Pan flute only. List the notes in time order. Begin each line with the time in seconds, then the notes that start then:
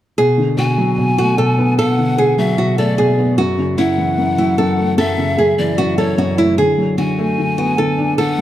0.58 G#5
1.78 F#5
2.38 E5
2.78 D5
3.78 F#5
4.98 E5
5.58 D5
5.98 C#5
6.98 G#5
8.18 F#5